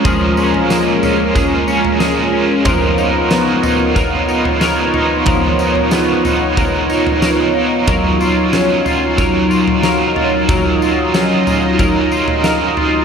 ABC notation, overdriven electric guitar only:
X:1
M:4/4
L:1/8
Q:1/4=92
K:C#mix
V:1 name="Overdriven electric guitar"
[A,,E,G,CEA] [G,CEA] [A,,E,G,CEA] [G,CEA] [G,CEA] [G,CEA] [A,,E,G,CEA] [G,CEA] | [C,G,B,EA] [B,EA] [C,G,B,EA] [B,EA] [G,B,EA] [B,EA] [C,G,B,EA] [B,EA] | [C,G,B,EA] [B,EA] [C,G,B,EA] [B,EA] [G,B,EA] [B,EA] [C,G,B,EA] [B,EA] | [D,F,CEA] [CEA] [D,F,CEA] [CEA] [F,CEA] [CEA] [D,F,CEA] [CEA] |
[D,F,CEA] [CEA] [D,F,CEA] [CEA] [F,CEA] [CEA] [D,F,CEA] [CEA] |]